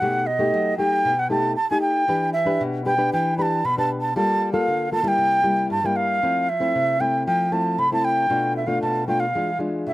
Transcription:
Already playing: F#5
0.02 B2 A3 D#4 G4
0.27 D#5
0.39 A3 D#4 G4
0.54 F#3
0.78 A3 D#4 G4 G5
1.05 B2
1.19 F#5
1.30 A3 D#4 G4 A5
1.56 A5
1.71 A3 D#4 G4 G#5
1.81 G5
2.08 E3 D4 G4 B4
2.33 E5
2.45 D4 G4 B4
2.61 B2
2.86 D4 G4 B4 G5
2.98 D4 G4 B4
3.13 E3 G5
3.38 D4 G4 B4 B5
3.42 A5
3.64 B2 B5
3.77 D4 G4 B4 A5
4.01 A5
4.16 G3 A#3 F4 A4 A5
4.53 A#3 F4 A4 F5
4.68 D3
4.92 A#3 F4 A4 A5
5.03 G3 A#3 E4 A5
5.08 G5
5.18 C3
5.44 G3 A#3 E4
5.70 G2 A5
5.84 G3 A#3 E4 G5
5.96 F5
6.23 F3 A3 C4 E4
6.49 E5
6.60 A3 C4 E4
6.75 C3
7.00 A3 C4 E4 G5
7.27 F3 G5
7.52 A3 C4 E4 A5
7.78 C3 B5
7.92 A3 C4 E4 A5
8.05 G5
8.30 B2 A3 D4 F4
8.57 E5
8.67 A3 D4 F4 F5
8.82 B2 A5
9.08 A3 D4 F4 G5
9.20 F5
9.35 E3 G#3 D4 F4
9.59 G#3 D4 F4
9.87 B2 E5

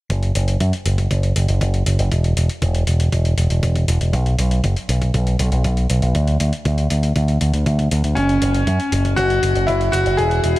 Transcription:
0.10 F#1, kick, closed hi-hat
0.23 closed hi-hat
0.35 F#1, closed hi-hat
0.48 closed hi-hat
0.60 F#2, kick, closed hi-hat
0.73 closed hi-hat
0.86 F#1, closed hi-hat
0.98 kick, closed hi-hat
1.11 F#1, kick, closed hi-hat
1.23 closed hi-hat
1.36 F#1, closed hi-hat
1.49 F#1, closed hi-hat
1.61 F#1, kick, closed hi-hat
1.74 closed hi-hat
1.86 F#1, closed hi-hat
1.99 F#1, closed hi-hat
2.12 E1, kick, closed hi-hat
2.24 closed hi-hat
2.37 E1, closed hi-hat
2.49 closed hi-hat
2.62 E1, kick, closed hi-hat
2.75 closed hi-hat
2.87 E1, closed hi-hat
3.00 closed hi-hat
3.12 E1, kick, closed hi-hat
3.25 closed hi-hat
3.38 E1, closed hi-hat
3.50 E1, closed hi-hat
3.63 E1, kick, closed hi-hat
3.76 kick, closed hi-hat
3.88 E1, closed hi-hat
4.01 E1, closed hi-hat
4.13 B1, kick, closed hi-hat
4.26 closed hi-hat
4.39 B1, closed hi-hat
4.51 closed hi-hat
4.64 F#1, kick, closed hi-hat
4.76 closed hi-hat
4.89 B1, closed hi-hat
5.02 kick, closed hi-hat
5.14 B1, kick, closed hi-hat
5.27 closed hi-hat
5.39 B1, closed hi-hat
5.52 B1, closed hi-hat
5.64 B1, kick, closed hi-hat
5.77 closed hi-hat
5.90 B1, closed hi-hat
6.02 B1, closed hi-hat
6.15 D2, kick, closed hi-hat
6.27 closed hi-hat
6.40 D2, closed hi-hat
6.53 closed hi-hat
6.65 D2, kick, closed hi-hat
6.78 closed hi-hat
6.90 D2, closed hi-hat
7.03 closed hi-hat
7.16 D2, kick, closed hi-hat
7.28 closed hi-hat
7.41 D2, closed hi-hat
7.54 D2, closed hi-hat
7.66 D2, kick, closed hi-hat
7.79 kick, closed hi-hat
7.91 D2, closed hi-hat
8.04 D2, closed hi-hat
8.15 F#1 C#4, kick, closed hi-hat
8.29 closed hi-hat
8.42 F#1, closed hi-hat
8.54 closed hi-hat
8.67 F#2, kick, closed hi-hat
8.80 closed hi-hat
8.92 F#1, closed hi-hat
9.05 kick, closed hi-hat
9.16 F#1 F#4, kick, closed hi-hat
9.30 closed hi-hat
9.43 F#1, closed hi-hat
9.55 F#1, closed hi-hat
9.67 F#1 E4, kick, closed hi-hat
9.81 closed hi-hat
9.92 F#1 F#4, closed hi-hat
10.06 F#1, closed hi-hat
10.17 E1 G#4, kick, closed hi-hat
10.31 closed hi-hat
10.44 E1, closed hi-hat

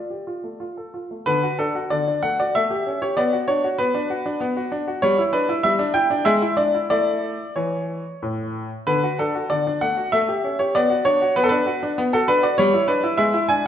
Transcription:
Already playing: F4 D5
0.10 G4
0.27 F4
0.44 A3
0.60 F4
0.77 A4
0.94 F4
1.11 A3
1.26 D3 B4
1.43 F#4
1.59 D4 A4
1.75 F#4
1.90 D3 D5
2.07 D4
2.23 A3 F#5
2.40 F#4 D5
2.55 A3 E5
2.71 G4
2.87 C#4
3.02 G4 C#5
3.17 B3 D5
3.33 F#4
3.48 D4 C#5
3.64 F#4
3.78 B3 B4
3.95 D4
4.10 F#4
4.26 D4
4.40 B3
4.57 F#4
4.72 D4
4.88 F#4
5.02 G3 C#5
5.18 E4
5.33 D4 B4
5.49 E4
5.63 G3 E5
5.79 D4
5.94 E4 G5
6.10 D4
6.25 G#3 E5
6.42 E4
6.57 D4 D5
6.74 E4
6.90 A3 E4 D5
7.56 E3 C#5
8.22 A2
8.87 D3 B4
9.04 F#4
9.19 D4 A4
9.35 F#4
9.50 D3 D5
9.67 D4
9.81 A3 F#5
9.97 F#4
10.12 A3 E5
10.29 G4
10.44 C#4
10.59 G4 C#5
10.75 B3 D5
10.90 F#4
11.05 D4 C#5
11.22 F#4
11.36 B3 B4
11.43 A4
11.49 D4 B4
11.66 F#4
11.83 D4
11.98 B3
12.13 F#4 A4
12.28 D4 B4
12.43 F#4 D5
12.58 G3 C#5
12.74 E4
12.88 D4 B4
13.04 E4
13.18 G#3 E5
13.34 E4
13.49 D4 G#5

